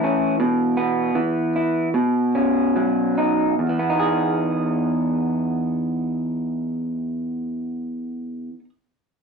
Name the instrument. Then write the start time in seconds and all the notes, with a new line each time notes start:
clean electric guitar
Already playing: A2 E3 E4 A4
0.04 C#4
0.40 B2
0.77 B3
1.15 E3
1.56 E4
1.94 B2
2.35 C#4
2.76 F#3
3.18 D#4
3.59 E2
3.69 E3
3.79 B3
3.90 D#4
4.00 G#4